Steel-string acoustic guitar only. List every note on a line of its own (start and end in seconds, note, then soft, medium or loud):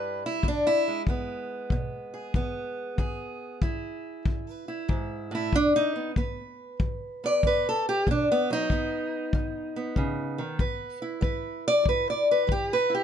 0.00 0.23 G2 medium
0.00 0.44 G3 soft
0.00 0.26 E4 soft
0.00 0.24 B4 medium
0.26 0.46 E4 medium
0.44 1.04 E2 medium
0.44 0.68 D4 medium
0.67 1.02 E4 loud
0.88 2.98 G#3 soft
1.08 1.68 E3 medium
1.08 2.36 B3 soft
1.72 2.31 B2 medium
2.14 2.97 G#4 soft
2.35 2.95 E3 medium
2.35 3.62 B3 soft
2.99 3.58 E2 medium
2.99 4.50 G#4 soft
3.62 4.22 G#3 medium
3.62 4.67 E4 soft
4.26 4.86 E2 medium
4.50 5.34 B4 loud
4.68 5.34 E4 soft
4.88 5.31 G#2 medium
5.31 5.53 A2 medium
5.31 5.55 E4 medium
5.54 6.13 B2 medium
5.54 5.75 D4 loud
5.76 6.11 D#4 loud
5.96 6.17 B3 soft
6.17 6.76 B3 medium
6.17 7.25 B4 medium
6.80 7.39 F#3 medium
7.24 7.44 B3 soft
7.24 7.46 D5 loud
7.44 8.03 B3 medium
7.44 7.67 B4 medium
7.69 7.88 A4 loud
7.89 8.09 G4 loud
8.07 8.67 B2 medium
8.07 8.30 D4 medium
8.32 8.51 B3 loud
8.50 8.70 F#3 soft
8.50 10.41 D#4 loud
8.72 9.30 F#3 medium
8.72 9.76 B3 soft
9.35 9.93 F#2 medium
9.76 11.01 B3 soft
9.97 10.39 C#3 medium
10.38 10.60 D#3 medium
10.60 11.19 E2 medium
10.60 11.22 B4 medium
11.02 12.89 E4 soft
11.21 11.81 G#3 medium
11.21 11.67 B4 soft
11.68 11.88 D5 loud
11.84 12.44 E2 medium
11.89 12.09 B4 medium
12.10 12.30 D5 medium
12.31 12.51 B4 medium
12.47 13.04 G#3 medium
12.52 12.72 G4 loud
12.73 12.93 B4 loud
12.90 13.04 E4 soft
12.95 13.04 G4 medium